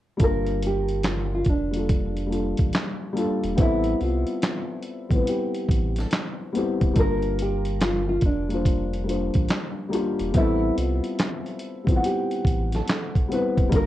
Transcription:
0.17 G1 G3 A#3 D4, kick, closed hi-hat
0.22 F4 A#4
0.47 closed hi-hat
0.63 closed hi-hat
0.67 G4
0.89 closed hi-hat
1.04 snare, clap, closed hi-hat
1.08 F4
1.35 F4
1.45 F1, kick, closed hi-hat
1.49 D4
1.71 G3 A#3 D4, closed hi-hat
1.75 F4 A4
1.89 kick, closed hi-hat
2.16 closed hi-hat
2.26 G3 A#3 D4
2.31 F4 A4, closed hi-hat
2.57 A1, kick, closed hi-hat
2.73 snare, clap, closed hi-hat
3.13 G3 A#3 D4, closed hi-hat
3.17 F4 A4
3.43 E1, closed hi-hat
3.56 A1 G3 B3 C4, kick, closed hi-hat
3.60 E4 A4 E5
3.84 closed hi-hat
4.01 C2 F4, closed hi-hat
4.26 closed hi-hat
4.42 snare, clap, closed hi-hat
4.82 closed hi-hat
5.09 A1 G3 B3 C4, kick, closed hi-hat
5.13 E4 B4
5.27 G4, closed hi-hat
5.54 closed hi-hat
5.68 A1, kick, closed hi-hat
5.96 snare, closed hi-hat
6.00 A4
6.11 snare, clap, closed hi-hat
6.53 G3 B3 C4, closed hi-hat
6.57 E4 G4
6.81 D1, kick, closed hi-hat
6.93 G1 G3 A#3 D4, kick, closed hi-hat
6.97 F4 A#4
7.22 closed hi-hat
7.39 G4, closed hi-hat
7.65 closed hi-hat
7.81 F4, snare, clap, closed hi-hat
8.09 F4
8.22 F1, kick, closed hi-hat
8.26 D4
8.49 G3 A#3 D4, closed hi-hat
8.53 F4 C5
8.65 kick, closed hi-hat
8.94 closed hi-hat
9.04 G3 A#3 D4
9.08 F4 C5, closed hi-hat
9.34 A1, kick, closed hi-hat
9.49 snare, clap, closed hi-hat
9.89 G3 A#3 D4
9.93 F4 G4, closed hi-hat
10.19 E1, closed hi-hat
10.32 A1 G3 B3 C4, kick, closed hi-hat
10.37 E4 A4 E5
10.77 C2 F4, closed hi-hat
11.04 closed hi-hat
11.18 snare, clap, closed hi-hat
11.46 closed hi-hat
11.59 closed hi-hat
11.84 A1 G3 B3 C4, kick
11.88 E4 F4, closed hi-hat
11.96 F#5
12.04 G4, closed hi-hat
12.31 closed hi-hat
12.45 A1, kick, closed hi-hat
12.72 A4, snare, closed hi-hat
12.88 snare, clap, closed hi-hat
13.15 kick, closed hi-hat
13.28 G3 B3 C4, closed hi-hat
13.33 E4 B4
13.57 D1, kick, closed hi-hat
13.69 G1 G3 A#3 D4, kick, closed hi-hat
13.74 F4 A#4

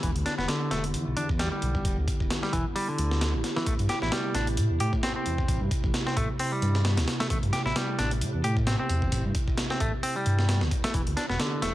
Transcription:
Already playing: D3 B3 E4 G4
0.03 E1 E3, kick, closed hi-hat
0.16 D2, closed hi-hat
0.26 D4, snare, closed hi-hat
0.38 E1 B3, snare
0.48 D3, snare, closed hi-hat
0.71 E1 A3, snare, closed hi-hat
0.84 closed hi-hat
0.94 E2, closed hi-hat
1.07 B1
1.17 E2 D4, closed hi-hat
1.29 kick
1.39 G3, snare, closed hi-hat
1.52 G3
1.62 B1, closed hi-hat
1.75 kick
1.85 E1, kick, closed hi-hat
1.98 D2
2.08 kick, closed hi-hat
2.20 E1, kick
2.30 snare, closed hi-hat
2.43 G3, snare
2.53 E1 E3, kick, closed hi-hat
2.76 G3, open hi-hat
2.88 D3
2.98 D2, closed hi-hat
3.11 snare
3.21 snare, closed hi-hat
3.34 A1
3.44 snare, closed hi-hat
3.56 E3, snare
3.66 A1 C3 A3, kick, closed hi-hat
3.79 G2, closed hi-hat
3.89 G4, snare, closed hi-hat
4.02 A1 E4, snare
4.12 G3, snare, closed hi-hat
4.35 A1 D4, snare, closed hi-hat
4.47 closed hi-hat
4.57 A2, closed hi-hat
4.70 E2
4.80 A2 G4, closed hi-hat
4.93 kick
5.03 C4, snare, closed hi-hat
5.16 C4
5.26 E2, closed hi-hat
5.38 kick
5.48 A1, kick, closed hi-hat
5.61 G2
5.71 kick, closed hi-hat
5.84 A1, kick
5.94 snare, closed hi-hat
6.07 C4, snare
6.17 A1 A3, kick, closed hi-hat
6.39 C4, open hi-hat
6.52 G3
6.62 G2, closed hi-hat
6.75 snare
6.85 snare, closed hi-hat
6.97 D2, snare, closed hi-hat
7.08 snare, closed hi-hat
7.20 A3, snare, closed hi-hat
7.30 A1 A3, kick, closed hi-hat
7.43 G2, closed hi-hat
7.53 G4, snare, closed hi-hat
7.66 A1 E4, snare
7.76 G3, snare, closed hi-hat
7.99 A1 D4, snare, closed hi-hat
8.11 closed hi-hat
8.21 A2, closed hi-hat
8.34 E2
8.44 A2 G4, closed hi-hat
8.57 kick
8.67 C4, snare, closed hi-hat
8.79 C4
8.89 E2, closed hi-hat
9.02 kick
9.12 A1, kick, closed hi-hat
9.25 G2
9.35 kick, closed hi-hat
9.48 A1, kick
9.57 snare, closed hi-hat
9.70 C4, snare
9.80 A1 A3, kick, closed hi-hat
10.03 C4, open hi-hat
10.16 G3
10.26 G2, closed hi-hat
10.39 snare
10.49 snare, closed hi-hat
10.61 D2, snare
10.71 kick, closed hi-hat
10.84 A3, snare, closed hi-hat
10.94 E1 D3 E3 B3 E4 G4, kick, closed hi-hat
11.07 D2, closed hi-hat
11.17 D4, snare, closed hi-hat
11.29 E1 B3, snare
11.39 D3, snare, closed hi-hat
11.62 E1 A3, snare, closed hi-hat

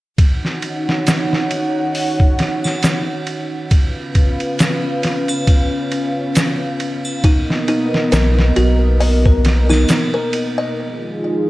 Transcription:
0.18 D#4 C#5 F#5, kick, ride
0.45 snare
0.62 ride
0.89 snare
1.07 snare, ride, shaker
1.33 snare
1.51 ride
1.95 open hi-hat
2.20 kick
2.39 snare, ride
2.64 snare, triangle
2.83 snare, ride, shaker
3.27 ride
3.71 C#4 B4 F5, kick, ride
4.15 kick, ride
4.40 ride
4.59 snare, ride, shaker
5.03 snare, ride
5.28 ride, triangle
5.47 kick, ride
5.92 ride
6.35 snare, ride, shaker
6.80 ride
7.05 triangle
7.23 B3 D#4 A#4 D#5, kick, ride
7.50 snare
7.68 D#4, ride
7.94 snare
8.12 B1 A#4, snare, ride, shaker
8.39 snare
8.56 B1 F#4, ride
9.00 D#5, open hi-hat
9.26 A#4, kick
9.45 snare, ride
9.70 D#4, snare, triangle
9.89 snare, ride, shaker
10.14 A#4
10.33 ride
10.58 D#5
10.78 D#4 F4 G#4

